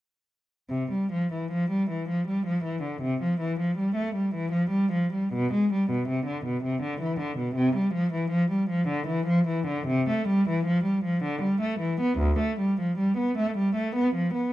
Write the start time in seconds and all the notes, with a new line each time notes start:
0.70 C3
0.92 G3
1.12 F3
1.33 E3
1.51 F3
1.70 G3
1.90 E3
2.09 F3
2.28 G3
2.46 F3
2.64 E3
2.82 D3
3.02 C3
3.22 F3
3.40 E3
3.60 F3
3.78 G3
3.95 A3
4.15 G3
4.35 E3
4.52 F3
4.70 G3
4.92 F3
5.13 G3
5.33 B2
5.53 G#3
5.73 G3
5.91 B2
6.08 C3
6.26 D3
6.46 B2
6.64 C3
6.82 D3
7.01 E3
7.20 D3
7.38 B2
7.55 C3
7.76 G3
7.94 F3
8.13 E3
8.30 F3
8.51 G3
8.70 F3
8.88 D3
9.07 E3
9.26 F3
9.48 E3
9.67 D3
9.87 C3
10.09 A3
10.28 G3
10.49 E3
10.66 F3
10.84 G3
11.04 F3
11.24 D3
11.42 G3
11.61 A3
11.80 E3
12.01 B3
12.19 D2
12.39 A3
12.60 G3
12.81 F3
12.98 G3
13.17 B3
13.38 A3
13.57 G3
13.76 A3
13.96 B3
14.15 F3
14.34 B3